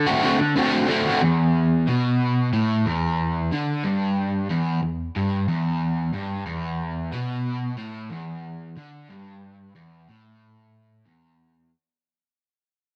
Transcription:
0, 0, Header, 1, 3, 480
1, 0, Start_track
1, 0, Key_signature, 1, "minor"
1, 0, Tempo, 655738
1, 890, Time_signature, 4, 2, 24, 8
1, 9480, End_track
2, 0, Start_track
2, 0, Title_t, "Overdriven electric guitar"
2, 0, Program_c, 0, 29
2, 48, Note_on_c, 0, 66, 77
2, 58, Note_on_c, 0, 60, 67
2, 66, Note_on_c, 0, 57, 65
2, 164, Note_off_c, 0, 57, 0
2, 168, Note_on_c, 0, 50, 66
2, 172, Note_off_c, 0, 60, 0
2, 173, Note_on_c, 0, 57, 71
2, 177, Note_off_c, 0, 66, 0
2, 181, Note_on_c, 0, 60, 76
2, 185, Note_on_c, 0, 66, 76
2, 284, Note_off_c, 0, 66, 0
2, 286, Note_off_c, 0, 60, 0
2, 291, Note_off_c, 0, 57, 0
2, 403, Note_off_c, 0, 50, 0
2, 412, Note_on_c, 0, 50, 84
2, 419, Note_on_c, 0, 57, 87
2, 424, Note_on_c, 0, 60, 89
2, 427, Note_on_c, 0, 66, 85
2, 638, Note_off_c, 0, 50, 0
2, 647, Note_off_c, 0, 57, 0
2, 647, Note_on_c, 0, 50, 66
2, 654, Note_off_c, 0, 60, 0
2, 656, Note_on_c, 0, 57, 68
2, 657, Note_off_c, 0, 66, 0
2, 663, Note_on_c, 0, 60, 65
2, 666, Note_on_c, 0, 66, 83
2, 874, Note_off_c, 0, 50, 0
2, 879, Note_off_c, 0, 57, 0
2, 882, Note_off_c, 0, 60, 0
2, 884, Note_off_c, 0, 66, 0
2, 891, Note_on_c, 0, 40, 81
2, 1363, Note_off_c, 0, 40, 0
2, 1371, Note_on_c, 0, 47, 95
2, 1843, Note_off_c, 0, 47, 0
2, 1853, Note_on_c, 0, 45, 101
2, 2084, Note_off_c, 0, 45, 0
2, 2094, Note_on_c, 0, 40, 96
2, 2565, Note_off_c, 0, 40, 0
2, 2573, Note_on_c, 0, 50, 87
2, 2804, Note_off_c, 0, 50, 0
2, 2813, Note_on_c, 0, 43, 87
2, 3284, Note_off_c, 0, 43, 0
2, 3297, Note_on_c, 0, 40, 102
2, 3526, Note_off_c, 0, 40, 0
2, 3534, Note_on_c, 0, 40, 65
2, 3724, Note_off_c, 0, 40, 0
2, 3778, Note_on_c, 0, 43, 100
2, 4007, Note_off_c, 0, 43, 0
2, 4015, Note_on_c, 0, 40, 99
2, 4486, Note_off_c, 0, 40, 0
2, 4491, Note_on_c, 0, 43, 88
2, 4724, Note_off_c, 0, 43, 0
2, 4731, Note_on_c, 0, 40, 84
2, 5204, Note_off_c, 0, 40, 0
2, 5214, Note_on_c, 0, 47, 103
2, 5686, Note_off_c, 0, 47, 0
2, 5695, Note_on_c, 0, 45, 93
2, 5926, Note_off_c, 0, 45, 0
2, 5934, Note_on_c, 0, 40, 95
2, 6406, Note_off_c, 0, 40, 0
2, 6416, Note_on_c, 0, 50, 88
2, 6647, Note_off_c, 0, 50, 0
2, 6654, Note_on_c, 0, 43, 85
2, 7127, Note_off_c, 0, 43, 0
2, 7140, Note_on_c, 0, 40, 92
2, 7369, Note_off_c, 0, 40, 0
2, 7383, Note_on_c, 0, 45, 88
2, 8091, Note_off_c, 0, 45, 0
2, 8095, Note_on_c, 0, 40, 85
2, 8567, Note_off_c, 0, 40, 0
2, 9480, End_track
3, 0, Start_track
3, 0, Title_t, "Muted overdriven electric guitar strokes"
3, 293, Note_on_c, 9, 29, 44
3, 366, Note_off_c, 9, 29, 0
3, 9480, End_track
0, 0, End_of_file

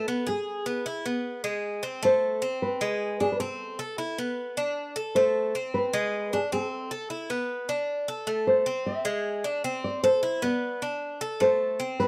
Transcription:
0, 0, Header, 1, 3, 480
1, 0, Start_track
1, 0, Key_signature, 0, "minor"
1, 0, Tempo, 390625
1, 571, Time_signature, 4, 2, 24, 8
1, 14840, End_track
2, 0, Start_track
2, 0, Title_t, "Nylon-string guitar"
2, 0, Program_c, 0, 24
2, 0, Note_on_c, 0, 69, 86
2, 346, Note_off_c, 0, 69, 0
2, 351, Note_on_c, 0, 68, 85
2, 1973, Note_off_c, 0, 68, 0
2, 2516, Note_on_c, 0, 72, 107
2, 3217, Note_off_c, 0, 72, 0
2, 3222, Note_on_c, 0, 71, 104
2, 3935, Note_off_c, 0, 71, 0
2, 3940, Note_on_c, 0, 68, 88
2, 4075, Note_off_c, 0, 68, 0
2, 4080, Note_on_c, 0, 71, 65
2, 4169, Note_off_c, 0, 71, 0
2, 4174, Note_on_c, 0, 69, 80
2, 5085, Note_off_c, 0, 69, 0
2, 6331, Note_on_c, 0, 72, 114
2, 7050, Note_off_c, 0, 72, 0
2, 7055, Note_on_c, 0, 71, 110
2, 7726, Note_off_c, 0, 71, 0
2, 7783, Note_on_c, 0, 68, 87
2, 7846, Note_off_c, 0, 68, 0
2, 8028, Note_on_c, 0, 69, 78
2, 8932, Note_off_c, 0, 69, 0
2, 10411, Note_on_c, 0, 72, 93
2, 10859, Note_off_c, 0, 72, 0
2, 10892, Note_on_c, 0, 76, 113
2, 11703, Note_off_c, 0, 76, 0
2, 11703, Note_on_c, 0, 74, 113
2, 12044, Note_off_c, 0, 74, 0
2, 12095, Note_on_c, 0, 74, 94
2, 12318, Note_off_c, 0, 74, 0
2, 12330, Note_on_c, 0, 72, 90
2, 12778, Note_off_c, 0, 72, 0
2, 12827, Note_on_c, 0, 74, 90
2, 13267, Note_off_c, 0, 74, 0
2, 14025, Note_on_c, 0, 72, 108
2, 14691, Note_off_c, 0, 72, 0
2, 14742, Note_on_c, 0, 71, 114
2, 14840, Note_off_c, 0, 71, 0
2, 14840, End_track
3, 0, Start_track
3, 0, Title_t, "Cuban tres"
3, 0, Program_c, 1, 25
3, 98, Note_on_c, 1, 59, 79
3, 326, Note_on_c, 1, 68, 75
3, 327, Note_off_c, 1, 59, 0
3, 795, Note_off_c, 1, 68, 0
3, 811, Note_on_c, 1, 59, 81
3, 1044, Note_off_c, 1, 59, 0
3, 1055, Note_on_c, 1, 64, 77
3, 1286, Note_off_c, 1, 64, 0
3, 1298, Note_on_c, 1, 59, 75
3, 1761, Note_off_c, 1, 59, 0
3, 1768, Note_on_c, 1, 56, 86
3, 2236, Note_off_c, 1, 56, 0
3, 2247, Note_on_c, 1, 60, 81
3, 2482, Note_off_c, 1, 60, 0
3, 2489, Note_on_c, 1, 57, 89
3, 2957, Note_off_c, 1, 57, 0
3, 2972, Note_on_c, 1, 60, 77
3, 3438, Note_off_c, 1, 60, 0
3, 3454, Note_on_c, 1, 56, 93
3, 3919, Note_off_c, 1, 56, 0
3, 3936, Note_on_c, 1, 62, 70
3, 4168, Note_off_c, 1, 62, 0
3, 4179, Note_on_c, 1, 60, 82
3, 4642, Note_off_c, 1, 60, 0
3, 4657, Note_on_c, 1, 69, 77
3, 4888, Note_off_c, 1, 69, 0
3, 4893, Note_on_c, 1, 64, 74
3, 5126, Note_off_c, 1, 64, 0
3, 5141, Note_on_c, 1, 59, 79
3, 5603, Note_off_c, 1, 59, 0
3, 5618, Note_on_c, 1, 62, 84
3, 6082, Note_off_c, 1, 62, 0
3, 6093, Note_on_c, 1, 69, 85
3, 6326, Note_off_c, 1, 69, 0
3, 6340, Note_on_c, 1, 57, 89
3, 6803, Note_off_c, 1, 57, 0
3, 6820, Note_on_c, 1, 60, 77
3, 7283, Note_off_c, 1, 60, 0
3, 7293, Note_on_c, 1, 56, 100
3, 7759, Note_off_c, 1, 56, 0
3, 7779, Note_on_c, 1, 62, 73
3, 8010, Note_off_c, 1, 62, 0
3, 8015, Note_on_c, 1, 60, 80
3, 8481, Note_off_c, 1, 60, 0
3, 8492, Note_on_c, 1, 69, 78
3, 8721, Note_off_c, 1, 69, 0
3, 8726, Note_on_c, 1, 64, 68
3, 8963, Note_off_c, 1, 64, 0
3, 8970, Note_on_c, 1, 59, 79
3, 9438, Note_off_c, 1, 59, 0
3, 9448, Note_on_c, 1, 62, 78
3, 9917, Note_off_c, 1, 62, 0
3, 9931, Note_on_c, 1, 69, 81
3, 10162, Note_on_c, 1, 57, 87
3, 10166, Note_off_c, 1, 69, 0
3, 10633, Note_off_c, 1, 57, 0
3, 10643, Note_on_c, 1, 60, 75
3, 11114, Note_off_c, 1, 60, 0
3, 11120, Note_on_c, 1, 56, 93
3, 11592, Note_off_c, 1, 56, 0
3, 11604, Note_on_c, 1, 62, 73
3, 11842, Note_off_c, 1, 62, 0
3, 11850, Note_on_c, 1, 60, 86
3, 12317, Note_off_c, 1, 60, 0
3, 12332, Note_on_c, 1, 69, 84
3, 12562, Note_off_c, 1, 69, 0
3, 12567, Note_on_c, 1, 64, 74
3, 12803, Note_off_c, 1, 64, 0
3, 12808, Note_on_c, 1, 59, 84
3, 13276, Note_off_c, 1, 59, 0
3, 13297, Note_on_c, 1, 62, 76
3, 13761, Note_off_c, 1, 62, 0
3, 13775, Note_on_c, 1, 69, 83
3, 14007, Note_off_c, 1, 69, 0
3, 14012, Note_on_c, 1, 57, 79
3, 14479, Note_off_c, 1, 57, 0
3, 14495, Note_on_c, 1, 60, 76
3, 14840, Note_off_c, 1, 60, 0
3, 14840, End_track
0, 0, End_of_file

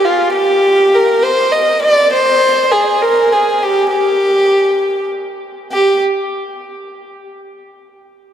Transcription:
0, 0, Header, 1, 2, 480
1, 0, Start_track
1, 0, Tempo, 595948
1, 296, Time_signature, 6, 3, 24, 8
1, 6712, End_track
2, 0, Start_track
2, 0, Title_t, "Violin"
2, 0, Program_c, 0, 40
2, 34, Note_on_c, 0, 65, 73
2, 260, Note_off_c, 0, 65, 0
2, 265, Note_on_c, 0, 67, 87
2, 759, Note_on_c, 0, 70, 81
2, 771, Note_off_c, 0, 67, 0
2, 987, Note_on_c, 0, 72, 89
2, 999, Note_off_c, 0, 70, 0
2, 1223, Note_on_c, 0, 75, 81
2, 1235, Note_off_c, 0, 72, 0
2, 1464, Note_off_c, 0, 75, 0
2, 1469, Note_on_c, 0, 74, 91
2, 1705, Note_off_c, 0, 74, 0
2, 1717, Note_on_c, 0, 72, 98
2, 2185, Note_on_c, 0, 68, 79
2, 2197, Note_off_c, 0, 72, 0
2, 2432, Note_on_c, 0, 70, 87
2, 2444, Note_off_c, 0, 68, 0
2, 2677, Note_on_c, 0, 68, 76
2, 2689, Note_off_c, 0, 70, 0
2, 2917, Note_on_c, 0, 67, 83
2, 2929, Note_off_c, 0, 68, 0
2, 3139, Note_off_c, 0, 67, 0
2, 3144, Note_on_c, 0, 67, 76
2, 4087, Note_off_c, 0, 67, 0
2, 4606, Note_on_c, 0, 67, 83
2, 4834, Note_off_c, 0, 67, 0
2, 6712, End_track
0, 0, End_of_file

